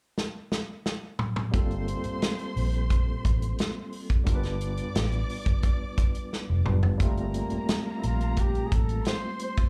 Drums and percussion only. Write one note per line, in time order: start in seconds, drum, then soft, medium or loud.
0.18 snare medium
0.52 snare medium
0.86 snare medium
1.19 mid tom medium
1.36 mid tom medium
1.54 kick medium
1.54 closed hi-hat medium
1.71 closed hi-hat soft
1.88 closed hi-hat medium
2.04 closed hi-hat soft
2.22 snare loud
2.22 closed hi-hat medium
2.39 closed hi-hat soft
2.57 open hi-hat soft
2.74 closed hi-hat soft
2.90 kick medium
2.90 closed hi-hat medium
3.25 kick medium
3.25 closed hi-hat medium
3.42 closed hi-hat soft
3.59 snare medium
3.59 closed hi-hat medium
3.93 open hi-hat medium
4.10 kick medium
4.10 closed hi-hat soft
4.26 kick medium
4.26 closed hi-hat medium
4.43 snare soft
4.43 closed hi-hat soft
4.61 closed hi-hat medium
4.77 closed hi-hat soft
4.95 snare loud
4.95 closed hi-hat medium
5.12 closed hi-hat soft
5.30 open hi-hat medium
5.46 kick medium
5.46 closed hi-hat soft
5.63 kick medium
5.63 closed hi-hat medium
5.98 kick loud
5.98 closed hi-hat medium
6.15 closed hi-hat soft
6.33 snare soft
6.66 mid tom medium
6.83 floor tom medium
7.00 kick medium
7.00 closed hi-hat medium
7.17 closed hi-hat soft
7.34 closed hi-hat medium
7.50 closed hi-hat soft
7.69 snare loud
7.69 closed hi-hat medium
8.03 closed hi-hat medium
8.21 closed hi-hat soft
8.37 kick medium
8.37 closed hi-hat medium
8.55 closed hi-hat soft
8.72 kick medium
8.72 closed hi-hat medium
8.89 closed hi-hat soft
9.05 snare medium
9.05 closed hi-hat medium
9.39 closed hi-hat medium
9.57 kick medium
9.57 closed hi-hat soft